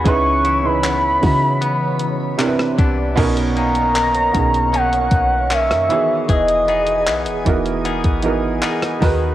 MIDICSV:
0, 0, Header, 1, 7, 480
1, 0, Start_track
1, 0, Key_signature, 5, "major"
1, 0, Tempo, 779221
1, 34, Time_signature, 4, 2, 24, 8
1, 5758, End_track
2, 0, Start_track
2, 0, Title_t, "Soft synth lead"
2, 0, Program_c, 0, 80
2, 43, Note_on_c, 0, 85, 120
2, 402, Note_on_c, 0, 83, 116
2, 411, Note_off_c, 0, 85, 0
2, 1718, Note_off_c, 0, 83, 0
2, 2203, Note_on_c, 0, 82, 127
2, 2927, Note_on_c, 0, 78, 102
2, 2937, Note_off_c, 0, 82, 0
2, 3406, Note_on_c, 0, 76, 103
2, 3415, Note_off_c, 0, 78, 0
2, 3880, Note_off_c, 0, 76, 0
2, 3884, Note_on_c, 0, 75, 89
2, 4815, Note_off_c, 0, 75, 0
2, 5758, End_track
3, 0, Start_track
3, 0, Title_t, "Ambient pad"
3, 0, Program_c, 1, 92
3, 33, Note_on_c, 1, 52, 85
3, 33, Note_on_c, 1, 73, 78
3, 33, Note_on_c, 1, 83, 98
3, 1459, Note_off_c, 1, 73, 0
3, 1472, Note_on_c, 1, 74, 73
3, 1934, Note_off_c, 1, 83, 0
3, 1935, Note_off_c, 1, 52, 0
3, 1948, Note_off_c, 1, 74, 0
3, 1953, Note_on_c, 1, 85, 91
3, 1954, Note_on_c, 1, 70, 81
3, 1954, Note_on_c, 1, 73, 77
3, 3617, Note_off_c, 1, 70, 0
3, 3617, Note_off_c, 1, 73, 0
3, 3617, Note_off_c, 1, 85, 0
3, 3634, Note_on_c, 1, 80, 77
3, 3635, Note_on_c, 1, 68, 83
3, 3635, Note_on_c, 1, 87, 91
3, 5535, Note_off_c, 1, 80, 0
3, 5535, Note_off_c, 1, 87, 0
3, 5555, Note_on_c, 1, 80, 93
3, 5556, Note_on_c, 1, 78, 80
3, 5758, Note_off_c, 1, 68, 0
3, 5758, Note_off_c, 1, 78, 0
3, 5758, Note_off_c, 1, 80, 0
3, 5758, End_track
4, 0, Start_track
4, 0, Title_t, "Grand piano"
4, 0, Program_c, 2, 0
4, 0, Control_c, 2, 64, 127
4, 26, Note_on_c, 2, 49, 105
4, 30, Note_on_c, 2, 61, 92
4, 36, Note_on_c, 2, 63, 89
4, 39, Note_on_c, 2, 64, 92
4, 43, Control_c, 2, 64, 0
4, 44, Note_on_c, 2, 71, 117
4, 138, Control_c, 2, 64, 127
4, 281, Note_off_c, 2, 49, 0
4, 283, Note_off_c, 2, 61, 0
4, 286, Note_off_c, 2, 63, 0
4, 288, Note_off_c, 2, 64, 0
4, 290, Note_off_c, 2, 71, 0
4, 387, Note_on_c, 2, 49, 73
4, 391, Note_on_c, 2, 61, 71
4, 395, Note_on_c, 2, 63, 72
4, 400, Note_on_c, 2, 64, 70
4, 404, Note_on_c, 2, 71, 82
4, 642, Note_off_c, 2, 49, 0
4, 644, Note_off_c, 2, 61, 0
4, 646, Note_off_c, 2, 63, 0
4, 648, Note_off_c, 2, 64, 0
4, 650, Note_off_c, 2, 71, 0
4, 745, Note_on_c, 2, 49, 73
4, 749, Note_on_c, 2, 61, 67
4, 754, Note_on_c, 2, 63, 68
4, 757, Note_on_c, 2, 64, 68
4, 762, Note_on_c, 2, 66, 85
4, 1420, Note_off_c, 2, 49, 0
4, 1421, Note_off_c, 2, 61, 0
4, 1424, Note_off_c, 2, 63, 0
4, 1426, Note_off_c, 2, 64, 0
4, 1428, Note_off_c, 2, 66, 0
4, 1463, Note_on_c, 2, 48, 88
4, 1467, Note_on_c, 2, 60, 85
4, 1472, Note_on_c, 2, 62, 84
4, 1477, Note_on_c, 2, 64, 88
4, 1480, Note_on_c, 2, 70, 78
4, 1482, Control_c, 2, 64, 0
4, 1517, Note_off_c, 2, 70, 0
4, 1521, Note_on_c, 2, 71, 100
4, 1580, Control_c, 2, 64, 127
4, 1853, Note_off_c, 2, 48, 0
4, 1855, Note_off_c, 2, 60, 0
4, 1857, Note_off_c, 2, 62, 0
4, 1860, Note_off_c, 2, 64, 0
4, 1882, Note_off_c, 2, 71, 0
4, 1944, Note_on_c, 2, 47, 118
4, 1949, Note_on_c, 2, 59, 109
4, 1954, Note_on_c, 2, 61, 109
4, 1958, Note_on_c, 2, 63, 112
4, 1962, Control_c, 2, 64, 0
4, 1962, Note_on_c, 2, 70, 127
4, 2063, Control_c, 2, 64, 127
4, 2452, Note_off_c, 2, 47, 0
4, 2454, Note_off_c, 2, 59, 0
4, 2456, Note_off_c, 2, 61, 0
4, 2459, Note_off_c, 2, 63, 0
4, 2460, Note_off_c, 2, 70, 0
4, 2666, Note_on_c, 2, 47, 79
4, 2670, Note_on_c, 2, 59, 65
4, 2675, Note_on_c, 2, 61, 71
4, 2679, Note_on_c, 2, 63, 67
4, 2683, Note_on_c, 2, 68, 78
4, 3340, Note_off_c, 2, 47, 0
4, 3342, Note_off_c, 2, 59, 0
4, 3345, Note_off_c, 2, 61, 0
4, 3347, Note_off_c, 2, 63, 0
4, 3348, Note_off_c, 2, 68, 0
4, 3628, Note_on_c, 2, 52, 77
4, 3632, Note_on_c, 2, 59, 72
4, 3637, Note_on_c, 2, 51, 74
4, 3642, Control_c, 2, 64, 0
4, 3642, Note_on_c, 2, 66, 73
4, 3645, Note_on_c, 2, 68, 90
4, 3747, Control_c, 2, 64, 127
4, 4399, Note_off_c, 2, 52, 0
4, 4401, Note_off_c, 2, 59, 0
4, 4404, Note_off_c, 2, 51, 0
4, 4406, Note_off_c, 2, 66, 0
4, 4407, Note_off_c, 2, 68, 0
4, 4590, Note_on_c, 2, 52, 94
4, 4595, Note_on_c, 2, 59, 86
4, 4598, Note_on_c, 2, 63, 83
4, 4604, Note_on_c, 2, 66, 81
4, 4607, Note_on_c, 2, 70, 95
4, 4927, Note_off_c, 2, 52, 0
4, 4929, Note_off_c, 2, 59, 0
4, 4931, Note_off_c, 2, 63, 0
4, 4934, Note_off_c, 2, 66, 0
4, 4936, Note_off_c, 2, 70, 0
4, 5069, Note_on_c, 2, 52, 88
4, 5073, Note_on_c, 2, 59, 79
4, 5078, Note_on_c, 2, 63, 82
4, 5082, Note_on_c, 2, 66, 80
4, 5086, Note_on_c, 2, 70, 97
4, 5407, Note_off_c, 2, 52, 0
4, 5409, Note_off_c, 2, 59, 0
4, 5411, Note_off_c, 2, 63, 0
4, 5413, Note_off_c, 2, 66, 0
4, 5415, Note_off_c, 2, 70, 0
4, 5546, Note_on_c, 2, 51, 93
4, 5550, Note_on_c, 2, 63, 86
4, 5554, Note_on_c, 2, 66, 82
4, 5560, Note_on_c, 2, 70, 85
4, 5562, Control_c, 2, 64, 0
4, 5564, Note_on_c, 2, 71, 106
4, 5661, Control_c, 2, 64, 127
4, 5758, Note_off_c, 2, 51, 0
4, 5758, Note_off_c, 2, 63, 0
4, 5758, Note_off_c, 2, 66, 0
4, 5758, Note_off_c, 2, 70, 0
4, 5758, Note_off_c, 2, 71, 0
4, 5758, End_track
5, 0, Start_track
5, 0, Title_t, "Clean electric guitar"
5, 0, Program_c, 3, 27
5, 0, Note_on_c, 3, 59, 62
5, 0, Note_on_c, 3, 66, 64
5, 0, Note_on_c, 3, 68, 70
5, 35, Note_on_c, 3, 49, 80
5, 85, Note_off_c, 3, 66, 0
5, 275, Note_on_c, 3, 64, 65
5, 513, Note_off_c, 3, 59, 0
5, 515, Note_on_c, 3, 59, 66
5, 992, Note_off_c, 3, 59, 0
5, 994, Note_on_c, 3, 59, 74
5, 1470, Note_off_c, 3, 49, 0
5, 1472, Note_on_c, 3, 48, 85
5, 1523, Note_off_c, 3, 64, 0
5, 1712, Note_off_c, 3, 59, 0
5, 1712, Note_on_c, 3, 52, 63
5, 1715, Note_on_c, 3, 59, 62
5, 1719, Note_on_c, 3, 62, 69
5, 1737, Note_off_c, 3, 68, 0
5, 1951, Note_off_c, 3, 48, 0
5, 1953, Note_on_c, 3, 47, 83
5, 1954, Note_off_c, 3, 62, 0
5, 1957, Note_on_c, 3, 61, 68
5, 2001, Note_off_c, 3, 52, 0
5, 2194, Note_off_c, 3, 61, 0
5, 2194, Note_on_c, 3, 51, 64
5, 2195, Note_off_c, 3, 59, 0
5, 2197, Note_on_c, 3, 58, 65
5, 2202, Note_on_c, 3, 61, 69
5, 2430, Note_off_c, 3, 51, 0
5, 2432, Note_on_c, 3, 51, 62
5, 2910, Note_off_c, 3, 58, 0
5, 2911, Note_off_c, 3, 51, 0
5, 2913, Note_off_c, 3, 61, 0
5, 2914, Note_on_c, 3, 51, 65
5, 2917, Note_on_c, 3, 58, 65
5, 2921, Note_on_c, 3, 61, 70
5, 3392, Note_off_c, 3, 58, 0
5, 3393, Note_off_c, 3, 51, 0
5, 3395, Note_off_c, 3, 61, 0
5, 3395, Note_on_c, 3, 51, 63
5, 3399, Note_on_c, 3, 58, 63
5, 3402, Note_on_c, 3, 61, 71
5, 3632, Note_off_c, 3, 51, 0
5, 3635, Note_on_c, 3, 52, 79
5, 3682, Note_off_c, 3, 47, 0
5, 3685, Note_off_c, 3, 58, 0
5, 3686, Note_off_c, 3, 61, 0
5, 3867, Note_off_c, 3, 52, 0
5, 3875, Note_on_c, 3, 52, 83
5, 3878, Note_on_c, 3, 68, 70
5, 4115, Note_on_c, 3, 59, 68
5, 4119, Note_on_c, 3, 63, 67
5, 4120, Note_off_c, 3, 68, 0
5, 4123, Note_on_c, 3, 68, 69
5, 4353, Note_off_c, 3, 59, 0
5, 4356, Note_on_c, 3, 59, 64
5, 4832, Note_off_c, 3, 59, 0
5, 4835, Note_off_c, 3, 63, 0
5, 4835, Note_on_c, 3, 59, 68
5, 4838, Note_on_c, 3, 63, 66
5, 4839, Note_off_c, 3, 68, 0
5, 4842, Note_on_c, 3, 68, 68
5, 5311, Note_off_c, 3, 59, 0
5, 5314, Note_on_c, 3, 59, 68
5, 5315, Note_off_c, 3, 63, 0
5, 5317, Note_on_c, 3, 63, 65
5, 5318, Note_off_c, 3, 68, 0
5, 5321, Note_on_c, 3, 68, 70
5, 5555, Note_on_c, 3, 51, 84
5, 5603, Note_off_c, 3, 52, 0
5, 5758, Note_off_c, 3, 51, 0
5, 5758, Note_off_c, 3, 59, 0
5, 5758, Note_off_c, 3, 63, 0
5, 5758, Note_off_c, 3, 68, 0
5, 5758, End_track
6, 0, Start_track
6, 0, Title_t, "808-style bass"
6, 0, Program_c, 4, 38
6, 35, Note_on_c, 4, 37, 104
6, 730, Note_off_c, 4, 37, 0
6, 759, Note_on_c, 4, 49, 104
6, 1452, Note_off_c, 4, 49, 0
6, 1716, Note_on_c, 4, 36, 102
6, 1946, Note_off_c, 4, 36, 0
6, 1956, Note_on_c, 4, 35, 112
6, 2650, Note_off_c, 4, 35, 0
6, 2680, Note_on_c, 4, 35, 102
6, 3138, Note_off_c, 4, 35, 0
6, 3151, Note_on_c, 4, 35, 104
6, 3520, Note_on_c, 4, 42, 99
6, 3530, Note_off_c, 4, 35, 0
6, 3632, Note_off_c, 4, 42, 0
6, 3876, Note_on_c, 4, 28, 105
6, 4355, Note_on_c, 4, 35, 95
6, 4364, Note_off_c, 4, 28, 0
6, 4476, Note_on_c, 4, 28, 93
6, 4485, Note_off_c, 4, 35, 0
6, 4589, Note_off_c, 4, 28, 0
6, 4598, Note_on_c, 4, 28, 106
6, 4942, Note_off_c, 4, 28, 0
6, 4957, Note_on_c, 4, 32, 99
6, 5301, Note_off_c, 4, 32, 0
6, 5557, Note_on_c, 4, 39, 106
6, 5758, Note_off_c, 4, 39, 0
6, 5758, End_track
7, 0, Start_track
7, 0, Title_t, "Drums"
7, 34, Note_on_c, 9, 36, 108
7, 34, Note_on_c, 9, 42, 67
7, 95, Note_off_c, 9, 36, 0
7, 96, Note_off_c, 9, 42, 0
7, 275, Note_on_c, 9, 42, 59
7, 337, Note_off_c, 9, 42, 0
7, 517, Note_on_c, 9, 39, 120
7, 521, Note_on_c, 9, 42, 61
7, 579, Note_off_c, 9, 39, 0
7, 583, Note_off_c, 9, 42, 0
7, 756, Note_on_c, 9, 46, 57
7, 757, Note_on_c, 9, 36, 100
7, 818, Note_off_c, 9, 46, 0
7, 819, Note_off_c, 9, 36, 0
7, 996, Note_on_c, 9, 42, 77
7, 1058, Note_off_c, 9, 42, 0
7, 1228, Note_on_c, 9, 42, 69
7, 1289, Note_off_c, 9, 42, 0
7, 1474, Note_on_c, 9, 39, 109
7, 1480, Note_on_c, 9, 42, 69
7, 1536, Note_off_c, 9, 39, 0
7, 1542, Note_off_c, 9, 42, 0
7, 1597, Note_on_c, 9, 37, 96
7, 1658, Note_off_c, 9, 37, 0
7, 1715, Note_on_c, 9, 36, 90
7, 1717, Note_on_c, 9, 42, 57
7, 1777, Note_off_c, 9, 36, 0
7, 1779, Note_off_c, 9, 42, 0
7, 1954, Note_on_c, 9, 36, 117
7, 1955, Note_on_c, 9, 42, 68
7, 1955, Note_on_c, 9, 49, 102
7, 2016, Note_off_c, 9, 36, 0
7, 2017, Note_off_c, 9, 42, 0
7, 2017, Note_off_c, 9, 49, 0
7, 2075, Note_on_c, 9, 42, 60
7, 2137, Note_off_c, 9, 42, 0
7, 2197, Note_on_c, 9, 42, 47
7, 2259, Note_off_c, 9, 42, 0
7, 2310, Note_on_c, 9, 42, 56
7, 2372, Note_off_c, 9, 42, 0
7, 2438, Note_on_c, 9, 39, 116
7, 2442, Note_on_c, 9, 42, 64
7, 2500, Note_off_c, 9, 39, 0
7, 2503, Note_off_c, 9, 42, 0
7, 2554, Note_on_c, 9, 42, 59
7, 2616, Note_off_c, 9, 42, 0
7, 2677, Note_on_c, 9, 42, 75
7, 2678, Note_on_c, 9, 36, 97
7, 2739, Note_off_c, 9, 42, 0
7, 2740, Note_off_c, 9, 36, 0
7, 2799, Note_on_c, 9, 42, 47
7, 2860, Note_off_c, 9, 42, 0
7, 2919, Note_on_c, 9, 42, 74
7, 2981, Note_off_c, 9, 42, 0
7, 3035, Note_on_c, 9, 42, 50
7, 3097, Note_off_c, 9, 42, 0
7, 3148, Note_on_c, 9, 42, 64
7, 3151, Note_on_c, 9, 36, 84
7, 3209, Note_off_c, 9, 42, 0
7, 3212, Note_off_c, 9, 36, 0
7, 3393, Note_on_c, 9, 39, 102
7, 3400, Note_on_c, 9, 42, 67
7, 3455, Note_off_c, 9, 39, 0
7, 3461, Note_off_c, 9, 42, 0
7, 3516, Note_on_c, 9, 37, 98
7, 3520, Note_on_c, 9, 42, 51
7, 3578, Note_off_c, 9, 37, 0
7, 3581, Note_off_c, 9, 42, 0
7, 3636, Note_on_c, 9, 42, 60
7, 3697, Note_off_c, 9, 42, 0
7, 3874, Note_on_c, 9, 36, 111
7, 3875, Note_on_c, 9, 42, 69
7, 3936, Note_off_c, 9, 36, 0
7, 3936, Note_off_c, 9, 42, 0
7, 3995, Note_on_c, 9, 42, 64
7, 4056, Note_off_c, 9, 42, 0
7, 4116, Note_on_c, 9, 42, 44
7, 4178, Note_off_c, 9, 42, 0
7, 4230, Note_on_c, 9, 42, 56
7, 4291, Note_off_c, 9, 42, 0
7, 4357, Note_on_c, 9, 39, 119
7, 4360, Note_on_c, 9, 42, 64
7, 4418, Note_off_c, 9, 39, 0
7, 4422, Note_off_c, 9, 42, 0
7, 4472, Note_on_c, 9, 42, 59
7, 4534, Note_off_c, 9, 42, 0
7, 4596, Note_on_c, 9, 42, 77
7, 4598, Note_on_c, 9, 36, 96
7, 4658, Note_off_c, 9, 42, 0
7, 4659, Note_off_c, 9, 36, 0
7, 4717, Note_on_c, 9, 42, 45
7, 4778, Note_off_c, 9, 42, 0
7, 4836, Note_on_c, 9, 42, 77
7, 4898, Note_off_c, 9, 42, 0
7, 4953, Note_on_c, 9, 42, 51
7, 4955, Note_on_c, 9, 36, 93
7, 5014, Note_off_c, 9, 42, 0
7, 5016, Note_off_c, 9, 36, 0
7, 5066, Note_on_c, 9, 42, 63
7, 5128, Note_off_c, 9, 42, 0
7, 5312, Note_on_c, 9, 39, 114
7, 5319, Note_on_c, 9, 42, 63
7, 5374, Note_off_c, 9, 39, 0
7, 5380, Note_off_c, 9, 42, 0
7, 5435, Note_on_c, 9, 37, 96
7, 5439, Note_on_c, 9, 42, 52
7, 5497, Note_off_c, 9, 37, 0
7, 5501, Note_off_c, 9, 42, 0
7, 5555, Note_on_c, 9, 36, 99
7, 5556, Note_on_c, 9, 46, 64
7, 5617, Note_off_c, 9, 36, 0
7, 5618, Note_off_c, 9, 46, 0
7, 5758, End_track
0, 0, End_of_file